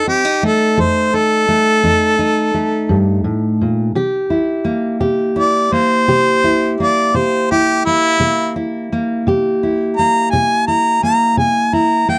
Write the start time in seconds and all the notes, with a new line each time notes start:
Already playing: F2
0.07 C4 G4
0.25 D#4
0.43 A3 A4
0.77 F2 A4 C5
1.14 D#4 A4
1.48 A3
1.83 F2 D#4
2.19 D#4
2.54 A3
2.89 G2
3.24 A2
3.61 A#2
3.95 C3 G4
4.30 E4
4.65 A#3
5.00 C3 G4
5.36 E4 D5
5.72 A#3 C5
6.08 C3 G4
6.44 E4
6.80 A#3 D5
7.14 C3 G4 C5
7.51 E4 G4
7.85 A#3 E4
8.20 C3 A#3
8.56 E4
8.92 A#3
9.27 C3 G4
9.63 E4
9.97 A#3 A#5
10.31 C3 G#5
10.67 E4 A#5
11.03 A#3 A#5
11.37 C3 G#5
11.73 E4 A#5
12.08 A#3 G5